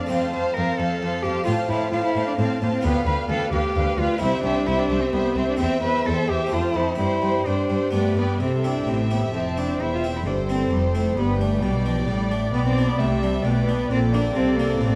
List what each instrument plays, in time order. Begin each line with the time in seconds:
Already playing: viola section D5, violin section F5 A5
0.06 harpsichord A3 C4 F4, cello C4
0.11 cello section F2, harpsichord F2, viola section C5, violin section F5 A5
0.30 harpsichord F2, cello C5
0.34 cello section F2, viola section C5, violin section F5 A5
0.54 harpsichord F2, cello section F2, cello A#4, viola section C5, violin section F5
0.58 violin section A5
0.77 cello section F2, harpsichord F2, cello A4, viola section C5, violin section F5 A5
1.02 cello section F2, harpsichord F2, viola section C5, violin section F5 A5
1.22 cello section F2, harpsichord F2, cello G4, viola section C5, violin section F5 A5
1.44 cello section A2, harpsichord A3 C4 F4, cello F4, viola section C5
1.48 harpsichord A2, violin section F5 A5
1.69 cello section A2, harpsichord A2, cello E4, viola section C5, violin section F5 A5
1.91 cello section A2, harpsichord A2, cello F4, viola section C5, violin section F5 A5
2.05 cello E4
2.15 cello section A2, harpsichord A2, viola section C5, violin section F5 A5
2.27 cello D4
2.38 cello section A2, harpsichord A2, cello C4, viola section C5, violin section F5 A5
2.61 cello section A2, harpsichord A2, cello A#3, viola section C5, violin section F5 A5
2.73 cello C4
2.81 cello section D2, harpsichord D2 B3 F4, cello B3, viola section B4, violin section F5 G5
3.06 harpsichord D2, cello section D2, cello B4, viola section B4, violin section F5 G5
3.29 harpsichord D2, cello section D2, cello A4, viola section B4, violin section F5 G5
3.53 cello section D2, harpsichord D2, cello G4, viola section B4, violin section F5 G5
3.75 harpsichord D2, cello section D2, viola section B4, violin section F5 G5
3.98 harpsichord D2, cello section D2, cello F4, viola section B4, violin section F5 G5
4.18 harpsichord C2 C4 E4, cello section C2, cello E4, viola section C5, violin section E5
4.23 violin section G5
4.44 harpsichord C2, cello section C2, cello D4, viola section C5, violin section E5 G5
4.66 cello section C2, harpsichord C2, cello E4, viola section C5, violin section E5 G5
4.79 cello D4
4.89 cello section C2, harpsichord C2, viola section C5, violin section E5 G5
5.03 cello C4
5.13 cello section C2, harpsichord C2, cello B3, viola section C5, violin section E5 G5
5.36 harpsichord C2, cello section C2, cello C4, viola section C5, violin section E5 G5
5.49 cello D4
5.57 cello section E2, harpsichord E2 C4 E4, cello C4, viola section C5, violin section E5 G5
5.82 harpsichord E2, cello section E2, cello B4, viola section C5, violin section E5 G5
6.06 harpsichord E2, cello section E2, cello A4, viola section C5, violin section E5 G5
6.28 harpsichord E2, cello section E2, cello G4, viola section C5, violin section E5 G5
6.47 harpsichord A3 C4
6.52 harpsichord F2, cello section F2, cello F4, viola section C5, violin section C5 A5
6.74 harpsichord F2, cello section F2, cello E4, viola section C5, violin section C5 A5
6.95 cello section G2, harpsichord G2 C4, cello E4, viola section C5, violin section C5 G5
7.22 harpsichord G2, cello section G2, violin section C5 G5, viola section C5
7.46 harpsichord G2, cello section G2, cello D4, viola section C5, violin section C5 G5
7.70 harpsichord G2, cello section G2, viola section C5, violin section C5 G5
7.91 cello section G2, harpsichord G2 B3 D4, cello A3, viola section B4
7.95 violin section D5 G5
8.17 cello section G2, harpsichord G2, cello B3, viola section B4, violin section D5 G5
8.40 double bass section C2, cello section C3, harpsichord C3, cello C4, viola section A4, violin section E5 G5
8.64 harpsichord C4 E4, cello D4
8.87 double bass section A1, cello section A2, harpsichord A2, cello C4, viola section G4
9.11 cello B3, harpsichord C4 E4
9.33 double bass section F1, cello section F2, harpsichord F2, cello C4, viola section C5, violin section A5
9.57 harpsichord C4 E4, cello D4
9.80 double bass section E1, cello section E2, harpsichord E2, cello E4, violin section E5 G5
9.95 cello F4
10.04 harpsichord C4 E4
10.16 cello E4
10.26 double bass section G1, cello section G2, harpsichord G2, cello D4, viola section A4, violin section C5
10.49 cello C4, harpsichord C4 E4
10.71 double bass section F1, harpsichord F2, cello section F2, cello G3, violin section C5 G5
10.95 cello A3, harpsichord C4 E4
11.17 double bass section G1, harpsichord G2, cello section G2, cello B3, viola section G4, violin section B4 G5
11.41 cello A3, harpsichord D4
11.62 double bass section B1, cello section B2, harpsichord B2, cello G3, viola section G4, violin section D5
11.86 cello F3, harpsichord D4
12.08 double bass section A1, harpsichord A2, cello section A2, cello G3, viola section D5
12.31 cello A3, harpsichord D4
12.53 double bass section B1, harpsichord B2, cello section B2, cello B3, violin section D5 G5
12.68 cello C4
12.78 harpsichord D4
12.89 cello B3
12.99 double bass section C2, cello section C3, harpsichord C3, cello A3, violin section E5 G5
13.22 cello G3, harpsichord D4
13.44 double bass section B1, harpsichord B2, cello section B2, cello A3, viola section B4, violin section D5
13.67 cello B3, harpsichord D4
13.89 double bass section A#1, cello section A#2, harpsichord A#2, cello C4, viola section A4, violin section D5
14.13 harpsichord A#3 D4, cello D4
14.35 double bass section C2, cello section C3, harpsichord C3, cello C4, violin section F5
14.57 cello A#3, harpsichord A#3 D4
14.81 double bass section A1, cello section A2, harpsichord A2, cello C4, violin section F5